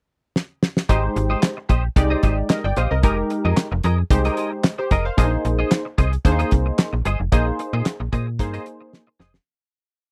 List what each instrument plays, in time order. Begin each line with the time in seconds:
0.36 snare
0.63 snare
0.77 snare
0.89 fm bass G#1, analog polysynth G#3 D#4 G4 C5, clean electric guitar G4 C5 D#5, kick, closed hi-hat
1.04 muted clean electric guitar stroke
1.16 fm bass G#1, muted clean electric guitar stroke, closed hi-hat
1.30 clean electric guitar G4 C5 D#5
1.43 snare, clap, closed hi-hat
1.57 muted clean electric guitar stroke
1.69 fm bass A#1, clean electric guitar G4 C5 D#5, kick, closed hi-hat
1.84 muted clean electric guitar stroke
1.96 fm bass C2, analog polysynth G#3 D#4 G4 D5, muted clean electric guitar stroke, kick, closed hi-hat
2.10 clean electric guitar G4 C5 D#5
2.23 fm bass G#1, clean electric guitar G4 C5 D#5, kick, closed hi-hat
2.38 muted clean electric guitar stroke
2.50 analog polysynth A#4 D#5, snare, clap, closed hi-hat
2.64 fm bass G1, analog polysynth D5 G5, muted clean electric guitar stroke
2.76 fm bass A#1, clean electric guitar G4 C5 D#5, analog polysynth C5 F5, closed hi-hat
2.91 fm bass C2, analog polysynth A#4 D#5, muted clean electric guitar stroke
3.03 fm bass F1, analog polysynth G#3 D#4 G4 A#4, clean electric guitar G#4 A#4 D#5, kick, closed hi-hat
3.18 muted clean electric guitar stroke
3.30 muted clean electric guitar stroke, closed hi-hat
3.45 fm bass F2, clean electric guitar G#4 A#4 D#5
3.57 snare, clap, closed hi-hat
3.72 fm bass F1, muted clean electric guitar stroke
3.84 fm bass F2, clean electric guitar G#4 A#4 D#5, closed hi-hat
3.98 muted clean electric guitar stroke
4.11 fm bass C2, analog polysynth G#3 D#4 G4 C5, muted clean electric guitar stroke, kick, closed hi-hat
4.25 clean electric guitar G#4 A#4 D#5, closed hi-hat
4.37 clean electric guitar G#4 A#4 D#5, closed hi-hat
4.52 muted clean electric guitar stroke
4.64 snare, clap, closed hi-hat
4.78 analog polysynth G4 C5, muted clean electric guitar stroke
4.91 fm bass F1, clean electric guitar G#4 A#4 D#5, analog polysynth A#4 D#5, kick, closed hi-hat
5.05 analog polysynth C5 F5, muted clean electric guitar stroke
5.17 fm bass A#1, analog polysynth A#3 D4 G#4 C5, clean electric guitar G#4 C5 D#5, kick, closed hi-hat
5.24 analog polysynth D#4
5.32 muted clean electric guitar stroke
5.45 fm bass A#1, muted clean electric guitar stroke, closed hi-hat
5.59 clean electric guitar G#4 C5 D#5
5.71 snare, clap, closed hi-hat
5.85 muted clean electric guitar stroke
5.98 fm bass C2, clean electric guitar G#4 C5 D#5, kick, closed hi-hat
6.12 muted clean electric guitar stroke, closed hi-hat
6.25 fm bass D#2, analog polysynth A#3 D4 G#4 C5, muted clean electric guitar stroke, kick, closed hi-hat
6.32 analog polysynth D#4
6.39 clean electric guitar G#4 C5 D#5, closed hi-hat
6.51 fm bass C2, kick, closed hi-hat
6.66 muted clean electric guitar stroke
6.79 snare, clap, closed hi-hat
6.93 fm bass A#1, muted clean electric guitar stroke
7.05 fm bass G1, clean electric guitar G#4 C5 D#5, closed hi-hat
7.20 fm bass F1, muted clean electric guitar stroke
7.32 fm bass A#1, analog polysynth A#3 D#4 G#4 C5, clean electric guitar G#4 C5 D#5, kick, closed hi-hat
7.47 muted clean electric guitar stroke
7.59 muted clean electric guitar stroke, closed hi-hat
7.73 fm bass A#2, clean electric guitar G#4 C5 D#5
7.85 snare, clap, closed hi-hat
8.00 fm bass A#1, muted clean electric guitar stroke
8.12 fm bass A#2, clean electric guitar G#4 C5 D#5, kick, closed hi-hat
8.27 muted clean electric guitar stroke
8.39 fm bass G2, analog polysynth A#3 D#4 G#4 C5, muted clean electric guitar stroke, kick, closed hi-hat
8.54 clean electric guitar G#4 C5 D#5, closed hi-hat
8.66 muted clean electric guitar stroke, closed hi-hat
8.81 muted clean electric guitar stroke
8.93 snare
9.07 muted clean electric guitar stroke
9.20 fm bass F1, clean electric guitar G#4 C5 D#5, snare
9.34 muted clean electric guitar stroke, snare